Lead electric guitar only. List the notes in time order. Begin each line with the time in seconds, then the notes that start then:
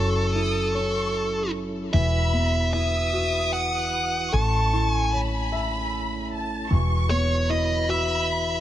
Already playing: A4
1.93 E5
2.73 E5
3.53 F#5
4.34 A5
4.92 G#5
7.10 C#5
7.51 D#5
7.90 E5